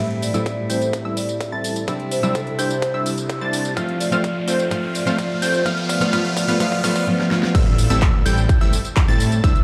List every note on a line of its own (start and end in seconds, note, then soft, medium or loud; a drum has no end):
0.00 0.32 A1 medium
0.00 0.31 A2 medium
0.00 0.31 G3 medium
0.00 0.31 A3 medium
0.00 0.31 C4 medium
0.00 0.32 C4 medium
0.00 0.31 E4 medium
0.00 0.32 E4 medium
0.00 0.31 A4 medium
0.00 0.31 E5 medium
0.00 0.31 E6 medium
0.00 riser medium
0.11 closed hi-hat soft
0.22 0.42 D5 medium
0.22 open hi-hat loud
0.22 tambourine medium
0.33 0.67 A1 medium
0.33 1.84 A2 medium
0.33 1.85 G3 medium
0.33 0.67 G3 medium
0.33 1.85 A3 medium
0.33 0.67 C4 medium
0.33 1.85 C4 medium
0.33 0.67 E4 medium
0.33 1.86 E4 loud
0.33 0.67 A4 medium
0.33 0.67 E5 medium
0.33 0.67 E6 medium
0.33 closed hi-hat soft
0.33 tambourine soft
0.46 0.66 D5 medium
0.46 kick loud
0.46 closed hi-hat medium
0.46 tambourine soft
0.70 1.03 A1 medium
0.70 1.02 G3 medium
0.70 1.02 C4 medium
0.70 1.02 E4 medium
0.70 1.02 A4 medium
0.70 0.89 C5 medium
0.70 1.02 G5 medium
0.70 1.02 G6 medium
0.70 open hi-hat loud
0.70 tambourine medium
0.82 closed hi-hat medium
0.82 tambourine soft
0.93 kick loud
0.93 closed hi-hat medium
0.93 tambourine soft
1.05 1.19 A1 medium
1.05 1.21 G3 medium
1.05 1.21 C4 medium
1.05 1.21 E4 medium
1.05 1.21 A4 medium
1.05 1.21 E5 medium
1.05 1.21 E6 medium
1.17 1.36 D5 medium
1.17 open hi-hat loud
1.17 tambourine medium
1.29 closed hi-hat medium
1.29 tambourine soft
1.41 kick loud
1.41 closed hi-hat medium
1.41 tambourine soft
1.52 1.85 A1 medium
1.52 1.85 G3 medium
1.52 1.85 C4 medium
1.52 1.85 E4 medium
1.52 1.85 A4 medium
1.52 1.85 A5 loud
1.52 1.85 A6 loud
1.64 open hi-hat loud
1.64 tambourine medium
1.76 closed hi-hat medium
1.76 tambourine soft
1.87 2.21 C2 loud
1.87 2.20 C3 medium
1.87 2.20 G3 medium
1.87 2.20 C4 medium
1.87 2.20 D4 medium
1.87 2.21 D4 medium
1.87 2.20 E4 medium
1.87 2.21 E4 medium
1.87 2.20 C5 medium
1.87 2.20 E5 medium
1.87 2.20 E6 medium
1.87 kick loud
1.87 closed hi-hat medium
1.87 tambourine soft
2.00 closed hi-hat soft
2.11 2.31 C5 medium
2.11 open hi-hat loud
2.11 tambourine medium
2.22 2.56 C2 loud
2.22 3.73 C3 medium
2.22 3.74 G3 medium
2.22 2.56 G3 medium
2.22 3.74 C4 medium
2.22 2.56 D4 medium
2.22 3.74 D4 medium
2.22 2.56 E4 medium
2.22 3.75 E4 loud
2.22 2.56 C5 medium
2.22 2.56 E5 medium
2.22 2.56 E6 medium
2.22 closed hi-hat soft
2.22 tambourine soft
2.35 2.43 A4 medium
2.35 kick loud
2.35 closed hi-hat medium
2.35 tambourine soft
2.47 2.54 A4 medium
2.47 closed hi-hat soft
2.59 2.92 C2 loud
2.59 2.91 G3 medium
2.59 2.91 D4 medium
2.59 2.91 E4 medium
2.59 2.91 C5 medium
2.59 2.94 C5 medium
2.59 2.91 G5 medium
2.59 2.91 G6 medium
2.59 open hi-hat loud
2.59 tambourine medium
2.70 closed hi-hat medium
2.70 tambourine soft
2.82 kick loud
2.82 closed hi-hat medium
2.82 tambourine soft
2.94 3.08 C2 medium
2.94 3.10 G3 medium
2.94 3.10 D4 medium
2.94 3.10 E4 medium
2.94 3.10 C5 medium
2.94 3.10 E5 medium
2.94 3.10 E6 medium
3.06 open hi-hat loud
3.06 tambourine medium
3.18 closed hi-hat medium
3.18 tambourine soft
3.30 kick loud
3.30 closed hi-hat medium
3.30 tambourine soft
3.41 3.74 C2 medium
3.41 3.74 G3 loud
3.41 3.74 D4 medium
3.41 3.74 E4 medium
3.41 3.74 C5 medium
3.41 3.74 A5 loud
3.41 3.74 A6 loud
3.53 open hi-hat loud
3.53 tambourine medium
3.65 closed hi-hat medium
3.65 tambourine soft
3.76 4.10 F1 medium
3.76 4.09 F3 medium
3.76 4.09 A3 medium
3.76 4.09 C4 medium
3.76 4.09 F4 medium
3.76 4.10 F4 medium
3.76 4.09 C5 medium
3.76 4.09 F5 medium
3.76 4.09 F6 medium
3.76 kick loud
3.76 closed hi-hat medium
3.76 tambourine soft
3.89 closed hi-hat soft
4.00 4.20 D5 medium
4.00 open hi-hat loud
4.00 tambourine medium
4.11 4.45 F1 loud
4.11 4.69 F3 medium
4.11 4.69 A3 medium
4.11 4.45 A3 medium
4.11 4.45 C4 medium
4.11 4.70 C4 medium
4.11 4.45 F4 medium
4.11 4.70 F4 medium
4.11 4.45 C5 medium
4.11 4.45 F5 medium
4.11 4.45 F6 medium
4.11 closed hi-hat soft
4.11 tambourine soft
4.24 4.43 D5 medium
4.24 kick loud
4.24 closed hi-hat medium
4.24 tambourine soft
4.48 4.69 F1 loud
4.48 4.69 A3 medium
4.48 4.69 C4 medium
4.48 4.69 F4 medium
4.48 4.69 C5 medium
4.48 4.67 C5 medium
4.48 4.69 G5 medium
4.48 4.69 G6 medium
4.48 open hi-hat loud
4.48 tambourine medium
4.60 closed hi-hat medium
4.60 tambourine soft
4.71 5.04 F1 loud
4.71 5.04 F3 medium
4.71 5.04 A3 medium
4.71 5.04 C4 medium
4.71 5.04 F4 medium
4.71 5.04 C5 medium
4.71 5.04 F5 medium
4.71 5.04 F6 medium
4.71 kick loud
4.71 closed hi-hat medium
4.71 tambourine soft
4.95 5.14 D5 medium
4.95 open hi-hat loud
4.95 tambourine medium
5.05 5.40 F1 loud
5.05 5.63 F3 medium
5.05 5.64 A3 medium
5.05 5.39 A3 medium
5.05 5.39 C4 medium
5.05 5.64 C4 medium
5.05 5.39 F4 medium
5.05 5.64 F4 medium
5.05 5.39 C5 medium
5.05 5.39 F5 medium
5.05 5.39 F6 medium
5.05 closed hi-hat soft
5.05 tambourine soft
5.19 5.38 D5 medium
5.19 kick loud
5.19 closed hi-hat medium
5.19 tambourine soft
5.42 5.63 F1 loud
5.42 5.64 A3 medium
5.42 5.64 C4 medium
5.42 5.64 F4 medium
5.42 5.64 C5 medium
5.42 5.62 C5 medium
5.42 5.64 G5 medium
5.42 5.64 G6 medium
5.42 open hi-hat loud
5.42 tambourine medium
5.54 closed hi-hat soft
5.54 tambourine soft
5.65 5.99 G1 loud
5.65 5.98 F3 medium
5.65 5.98 A3 medium
5.65 5.98 B3 medium
5.65 5.98 F4 medium
5.65 5.99 F4 medium
5.65 5.98 B4 medium
5.65 5.98 F5 medium
5.65 5.98 F6 medium
5.65 kick loud
5.65 closed hi-hat medium
5.65 tambourine soft
5.78 closed hi-hat soft
5.89 6.09 D5 medium
5.89 kick loud
5.89 open hi-hat loud
5.89 tambourine medium
6.00 6.11 G1 loud
6.00 6.11 F3 medium
6.00 6.11 A3 medium
6.00 6.11 B3 medium
6.00 6.11 F4 medium
6.00 6.12 F4 loud
6.00 6.11 B4 medium
6.00 6.11 F5 medium
6.00 6.11 F6 medium
6.00 closed hi-hat soft
6.00 tambourine soft
6.12 6.46 G1 loud
6.12 6.45 F3 medium
6.12 6.46 A3 medium
6.12 6.46 B3 medium
6.12 6.46 F4 medium
6.12 6.46 F4 loud
6.12 6.46 B4 medium
6.12 6.46 F5 medium
6.12 6.46 F6 medium
6.12 kick loud
6.12 closed hi-hat medium
6.12 tambourine soft
6.25 closed hi-hat soft
6.37 6.56 D5 medium
6.37 kick loud
6.37 open hi-hat loud
6.37 tambourine medium
6.47 6.58 G1 loud
6.47 6.58 F3 medium
6.47 6.58 A3 medium
6.47 6.58 B3 medium
6.47 6.59 B3 medium
6.47 6.58 F4 medium
6.47 6.59 F4 loud
6.47 6.58 B4 medium
6.47 6.58 F5 medium
6.47 6.58 F6 medium
6.47 closed hi-hat soft
6.47 tambourine soft
6.60 6.82 G1 loud
6.60 6.82 F3 medium
6.60 6.82 A3 medium
6.60 6.82 B3 medium
6.60 6.82 F4 medium
6.60 6.82 F4 loud
6.60 6.82 B4 medium
6.60 6.82 F5 medium
6.60 6.82 F6 medium
6.60 kick loud
6.60 closed hi-hat medium
6.60 tambourine soft
6.72 kick medium
6.83 7.05 G1 loud
6.83 7.05 F3 medium
6.83 7.06 A3 medium
6.83 7.06 B3 medium
6.83 7.06 F4 medium
6.83 7.06 F4 loud
6.83 7.06 B4 medium
6.83 7.06 F5 medium
6.83 7.06 F6 medium
6.83 kick loud
6.83 open hi-hat loud
6.83 tambourine medium
6.96 kick medium
6.96 closed hi-hat medium
6.96 tambourine soft
7.07 7.29 F3 medium
7.07 7.29 A3 medium
7.07 7.29 B3 medium
7.07 7.30 F4 loud
7.19 snare medium
7.30 7.53 F3 medium
7.30 7.53 A3 medium
7.30 7.53 B3 medium
7.30 7.53 F4 loud
7.30 snare medium
7.43 snare medium
7.55 7.88 A1 medium
7.55 7.87 G3 medium
7.55 7.87 C4 medium
7.55 7.87 E4 medium
7.55 7.87 A4 medium
7.55 7.87 E5 medium
7.55 7.87 E6 medium
7.55 kick loud
7.55 closed hi-hat medium
7.55 crash loud
7.55 tambourine soft
7.55 impact medium
7.67 closed hi-hat soft
7.78 open hi-hat loud
7.78 tambourine medium
7.90 8.23 A1 loud
7.90 8.23 G3 medium
7.90 8.23 C4 medium
7.90 8.23 E4 medium
7.90 8.23 A4 medium
7.90 8.23 E5 medium
7.90 8.23 E6 medium
7.90 closed hi-hat medium
7.90 tambourine soft
8.02 kick loud
8.02 clap loud
8.02 closed hi-hat medium
8.02 tambourine soft
8.26 8.59 A1 loud
8.26 8.58 G3 medium
8.26 8.58 C4 medium
8.26 8.58 E4 medium
8.26 8.58 A4 medium
8.26 8.58 G5 medium
8.26 8.58 G6 medium
8.26 open hi-hat loud
8.26 tambourine medium
8.37 closed hi-hat medium
8.37 tambourine soft
8.49 kick loud
8.49 closed hi-hat medium
8.49 tambourine soft
8.61 8.75 A1 loud
8.61 8.77 G3 medium
8.61 8.77 C4 medium
8.61 8.77 E4 medium
8.61 8.77 A4 medium
8.61 8.77 E5 medium
8.61 8.77 E6 medium
8.73 open hi-hat loud
8.73 tambourine medium
8.85 closed hi-hat medium
8.85 tambourine soft
8.96 kick loud
8.96 clap loud
8.96 closed hi-hat medium
8.96 tambourine soft
9.08 9.41 A2 loud
9.08 9.41 G3 loud
9.08 9.41 C4 medium
9.08 9.41 E4 medium
9.08 9.41 A4 medium
9.08 9.41 A5 loud
9.08 9.41 A6 loud
9.20 open hi-hat loud
9.20 tambourine medium
9.32 closed hi-hat medium
9.32 tambourine soft
9.44 9.64 C2 loud
9.44 9.64 G3 medium
9.44 9.64 D4 medium
9.44 9.64 E4 medium
9.44 9.64 C5 medium
9.44 9.64 E5 medium
9.44 9.64 E6 medium
9.44 kick loud
9.44 closed hi-hat medium
9.44 tambourine soft
9.56 closed hi-hat soft